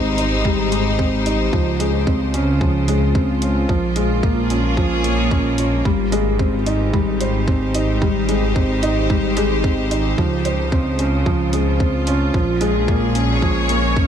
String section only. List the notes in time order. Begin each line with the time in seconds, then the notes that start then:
Already playing: D#4 G4 C5
1.53 C#3
2.50 F4
3.69 A#3
4.42 G#4
4.67 C#5
6.33 D#4
6.57 G4
7.21 C5
10.19 C#3
11.15 F4
12.35 A#2
12.63 G#4
12.77 A#3
13.32 C#5